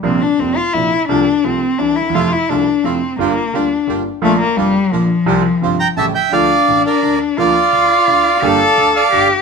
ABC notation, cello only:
X:1
M:3/4
L:1/8
Q:1/4=172
K:F
V:1 name="Cello"
C D C F E2 | D2 C2 D E | F E D2 C2 | B,2 D2 z2 |
A, B, G,2 F,2- | F,4 z2 | [K:Dm] D6 | F6 |
A4 G2 |]